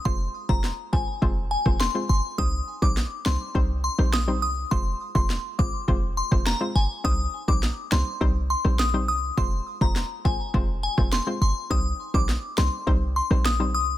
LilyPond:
<<
  \new Staff \with { instrumentName = "Synth bell" } { \time 4/4 \key c \minor \tempo 4 = 103 c'''16 r8 bes''16 r8 aes''16 r8. aes''16 r16 c'''16 r16 c'''16 r16 | ees'''16 r8 d'''16 r8 c'''16 r8. c'''16 r16 ees'''16 r16 ees'''16 r16 | c'''16 r8 c'''16 r8 d'''16 r8. c'''16 r16 bes''16 r16 aes''16 r16 | ees'''16 r8 d'''16 r8 c'''16 r8. c'''16 r16 ees'''16 r16 ees'''16 r16 |
c'''16 r8 bes''16 r8 aes''16 r8. aes''16 r16 c'''16 r16 c'''16 r16 | ees'''16 r8 d'''16 r8 c'''16 r8. c'''16 r16 ees'''16 r16 ees'''16 r16 | }
  \new Staff \with { instrumentName = "Synth pluck" } { \time 4/4 \key c \minor <aes c' f' c''>8. <aes c' f' c''>16 r8 <aes c' f' c''>16 r16 <aes c' f' c''>8. <aes c' f' c''>16 r16 <aes c' f' c''>16 r8 | <g c' ees' c''>8. <g c' ees' c''>16 r8 <g c' ees' c''>16 r16 <g c' ees' c''>8. <g c' ees' c''>16 r16 <g c' ees' c''>16 r8 | <aes c' f' c''>8. <aes c' f' c''>16 r8 <aes c' f' c''>16 r16 <aes c' f' c''>8. <aes c' f' c''>16 r16 <aes c' f' c''>16 r8 | <g c' ees' c''>8. <g c' ees' c''>16 r8 <g c' ees' c''>16 r16 <g c' ees' c''>8. <g c' ees' c''>16 r16 <g c' ees' c''>16 r8 |
<aes c' f' c''>8. <aes c' f' c''>16 r8 <aes c' f' c''>16 r16 <aes c' f' c''>8. <aes c' f' c''>16 r16 <aes c' f' c''>16 r8 | <g c' ees' c''>8. <g c' ees' c''>16 r8 <g c' ees' c''>16 r16 <g c' ees' c''>8. <g c' ees' c''>16 r16 <g c' ees' c''>16 r8 | }
  \new Staff \with { instrumentName = "808-style bass" } { \clef bass \time 4/4 \key c \minor f,,8 r16 f,,8 r16 aes,,16 r16 f,,8. f,,8 r16 g,,16 r16 | c,8 r16 bes,,8 r16 c,16 r16 c,8. bes,,8. c,8 | f,,8 r16 f,,8 r16 aes,,16 r16 f,,8. f,,8 r16 g,,16 r16 | c,8 r16 bes,,8 r16 c,16 r16 c,8. bes,,8. c,8 |
f,,8 r16 f,,8 r16 aes,,16 r16 f,,8. f,,8 r16 g,,16 r16 | c,8 r16 bes,,8 r16 c,16 r16 c,8. bes,,8. c,8 | }
  \new DrumStaff \with { instrumentName = "Drums" } \drummode { \time 4/4 bd8. bd16 sn8 bd8 bd8. <bd ss>16 sn4 | bd8. bd16 sn8 sn8 bd8. ss16 sn4 | bd8. bd16 sn8 bd8 bd8. <bd ss>16 sn4 | bd8. bd16 sn8 sn8 bd8. ss16 sn4 |
bd8. bd16 sn8 bd8 bd8. <bd ss>16 sn4 | bd8. bd16 sn8 sn8 bd8. ss16 sn4 | }
>>